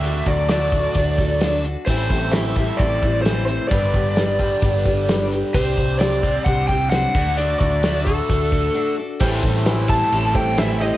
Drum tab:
CC |--------|--------|--------|--------|
RD |--------|--------|--------|--------|
HH |xxxxxxxx|xxxxxxxx|xxxxxxxx|xxxxxxxx|
SD |--o---o-|--o---o-|--o---o-|--o---o-|
BD |-o-ooo--|oo-ooo--|oo-ooo--|oo-ooo-o|

CC |--------|x-------|
RD |--------|-xxxxxxx|
HH |xxxxxx--|--------|
SD |--o-----|--o---o-|
BD |-o-ooo--|oo-o-o--|